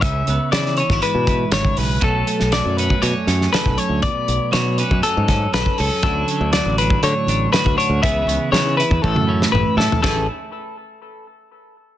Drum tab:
RD |----------------|----------------|----------------|----------------|
HH |x-x-x-x-x-x-x-o-|x-x-x-x-x-x-x-x-|x-x-x-x-x-x-x-o-|x-x-x-x-x-x-x-x-|
SD |----oo-o----o---|---oo-----ooo---|----o-----o-o---|----o-------o---|
T1 |----------------|----------------|----------------|----------------|
T2 |----------------|----------------|----------------|----------------|
FT |----------------|----------------|----------------|----------------|
BD |o------o--o--o--|o------o-----o--|o------o--o--o--|o------o-----o--|

RD |----------------|b---------------|
HH |x-x-x-x---------|----------------|
SD |----o------o--o-|o---------------|
T1 |---------o------|----------------|
T2 |------------o---|----------------|
FT |---------------o|----------------|
BD |o------oo-------|o---------------|